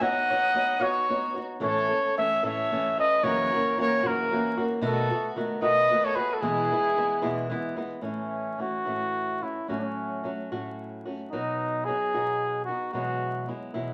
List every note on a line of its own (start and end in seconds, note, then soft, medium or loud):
0.00 0.29 B3 medium
0.00 0.30 D#4 medium
0.00 0.30 F#4 medium
0.00 0.29 C#5 medium
0.00 0.83 D#5 medium
0.00 0.84 F#5 loud
0.30 0.54 D#4 soft
0.30 0.55 F#4 medium
0.30 0.55 C#5 medium
0.54 0.80 B3 medium
0.54 0.79 D#4 medium
0.54 0.79 F#4 medium
0.54 0.79 C#5 medium
0.80 1.09 B3 medium
0.80 1.09 D#4 soft
0.80 1.09 F#4 medium
0.80 1.43 F#4 medium
0.80 1.10 C#5 medium
0.80 1.43 C#5 medium
1.10 1.36 B3 medium
1.10 1.35 D#4 medium
1.10 1.34 F#4 medium
1.10 1.34 C#5 medium
1.35 1.60 D#4 soft
1.35 1.61 F#4 soft
1.35 1.61 C#5 soft
1.60 1.91 A2 medium
1.60 1.91 E3 medium
1.60 1.90 A3 medium
1.60 1.89 C#4 medium
1.60 1.88 A4 medium
1.60 2.14 C#5 loud
1.65 2.15 A4 medium
1.89 2.17 A3 soft
1.89 2.17 C#4 soft
1.89 2.16 A4 medium
2.17 2.42 E3 medium
2.17 2.42 A3 medium
2.17 2.41 C#4 medium
2.17 2.42 A4 medium
2.17 2.42 C#5 medium
2.17 2.41 E5 loud
2.43 2.72 A2 medium
2.43 2.70 E3 medium
2.43 2.71 A3 medium
2.43 2.71 C#4 medium
2.43 2.72 A4 medium
2.43 2.95 C#5 medium
2.43 2.95 E5 medium
2.71 2.97 E3 medium
2.71 2.97 A3 medium
2.71 2.98 C#4 medium
2.71 2.97 A4 medium
2.98 3.23 A3 soft
2.98 3.23 C#4 soft
2.98 3.23 A4 medium
2.98 3.26 B4 medium
2.98 3.25 D#5 loud
3.23 3.52 F#2 medium
3.23 3.52 C#3 medium
3.23 3.52 E3 medium
3.23 3.52 A#3 medium
3.23 3.51 C#4 medium
3.23 3.51 F#4 medium
3.23 3.77 A#4 medium
3.23 3.77 C#5 medium
3.52 3.76 E3 soft
3.52 3.77 A#3 soft
3.52 3.77 C#4 medium
3.52 3.77 F#4 medium
3.77 4.02 E3 medium
3.77 4.03 A#3 medium
3.77 4.03 C#4 medium
3.77 4.02 F#4 medium
3.77 4.04 A#4 medium
3.77 4.08 C#5 medium
4.03 4.32 F#2 medium
4.03 4.31 C#3 medium
4.03 4.30 E3 medium
4.03 4.30 A#3 medium
4.03 4.31 C#4 medium
4.03 4.62 F#4 medium
4.03 4.31 F#4 medium
4.03 4.64 A#4 medium
4.31 4.56 E3 medium
4.31 4.56 A#3 medium
4.31 4.56 C#4 medium
4.31 4.56 F#4 medium
4.57 4.81 E3 soft
4.57 4.82 A#3 medium
4.57 4.82 C#4 medium
4.57 4.82 F#4 medium
4.82 5.10 B2 medium
4.82 5.10 D#3 medium
4.82 5.10 A3 medium
4.82 5.10 B3 medium
4.82 5.10 F#4 medium
4.82 5.32 F#4 medium
4.82 5.33 A4 medium
5.11 5.35 A3 soft
5.11 5.36 B3 medium
5.11 5.36 F#4 medium
5.36 5.61 D#3 medium
5.36 5.61 A3 medium
5.36 5.61 B3 medium
5.36 5.61 F#4 medium
5.62 5.90 B2 medium
5.62 5.89 D#3 medium
5.62 5.90 A3 medium
5.62 5.90 B3 medium
5.62 5.90 F#4 medium
5.62 6.06 B4 medium
5.62 6.06 D#5 loud
5.90 6.15 D#3 medium
5.90 6.16 A3 medium
5.90 6.16 B3 medium
5.90 6.15 F#4 medium
6.04 6.16 A4 medium
6.04 6.17 C#5 medium
6.14 6.42 A3 soft
6.14 6.42 B3 medium
6.14 6.41 F#4 soft
6.14 6.34 G#4 medium
6.14 6.35 B4 loud
6.32 6.40 F#4 medium
6.32 6.43 A4 medium
6.39 6.70 E2 medium
6.39 6.70 E3 medium
6.39 7.49 E4 medium
6.39 7.50 G#4 medium
6.43 6.71 B2 medium
6.43 6.71 G#3 medium
6.43 6.70 B3 medium
6.43 6.70 E4 medium
6.72 6.96 E3 soft
6.72 6.96 G#3 soft
6.72 6.96 B3 medium
6.72 6.96 E4 medium
6.97 7.22 E3 medium
6.97 7.21 G#3 medium
6.97 7.21 B3 medium
6.97 7.21 E4 medium
7.22 7.51 E2 medium
7.22 7.51 B2 medium
7.22 7.48 E3 medium
7.22 7.50 G#3 medium
7.22 7.50 B3 medium
7.22 7.50 E4 medium
7.50 7.76 E3 medium
7.50 7.77 G#3 medium
7.50 7.76 B3 medium
7.50 7.75 E4 medium
7.76 8.01 E3 soft
7.76 8.02 G#3 soft
7.76 8.02 B3 medium
7.76 8.02 E4 soft
8.01 8.59 A2 soft
8.01 8.57 E3 medium
8.01 8.58 A3 medium
8.01 8.59 C#4 medium
8.01 8.62 C#4 medium
8.01 8.59 E4 soft
8.58 8.85 E3 soft
8.58 8.85 A3 soft
8.58 8.85 C#4 soft
8.58 8.84 E4 medium
8.58 9.44 F#4 medium
8.85 9.42 A2 soft
8.85 9.42 E3 soft
8.85 9.41 A3 soft
8.85 9.41 C#4 soft
8.85 9.40 E4 soft
9.41 9.68 A3 soft
9.41 9.68 C#4 soft
9.41 9.67 E4 soft
9.41 9.68 E4 medium
9.68 10.24 A2 medium
9.68 10.23 F#3 soft
9.68 10.23 A3 medium
9.68 10.23 C#4 medium
9.68 9.80 C#4 medium
9.68 10.25 F#4 medium
9.78 9.85 D4 soft
9.84 10.30 C#4 medium
10.24 10.50 F#3 soft
10.24 10.50 A3 soft
10.24 10.50 C#4 medium
10.24 10.51 F#4 medium
10.52 11.07 A2 soft
10.52 11.32 F#3 soft
10.52 11.06 A3 medium
10.52 11.05 C#4 medium
10.52 11.05 F#4 medium
11.05 11.32 A3 soft
11.05 11.32 C#4 soft
11.05 11.31 F#4 soft
11.31 11.87 B2 medium
11.31 11.87 F#3 medium
11.31 11.87 B3 medium
11.31 11.86 D#4 medium
11.31 11.87 D#4 medium
11.31 11.89 F#4 medium
11.85 12.13 F#3 soft
11.85 12.13 B3 medium
11.85 12.64 G#4 medium
11.89 12.13 D#4 medium
11.89 12.13 F#4 medium
12.14 12.70 B2 soft
12.14 12.69 F#3 soft
12.14 12.68 B3 medium
12.14 12.67 D#4 medium
12.14 12.67 F#4 medium
12.65 12.93 B3 soft
12.65 12.94 D#4 soft
12.65 12.91 F#4 medium
12.65 12.94 F#4 soft
12.93 13.49 E2 medium
12.93 13.49 B2 medium
12.93 13.46 F#3 medium
12.93 13.48 G#3 medium
12.93 13.47 B3 medium
12.93 13.48 E4 medium
12.93 13.52 F#4 medium
13.47 13.74 F#3 soft
13.47 13.74 G#3 soft
13.47 13.73 B3 soft
13.47 13.73 E4 soft
13.74 13.94 E2 soft
13.74 13.94 B2 soft
13.74 13.94 F#3 medium
13.74 13.94 G#3 soft
13.74 13.94 B3 soft
13.74 13.94 E4 medium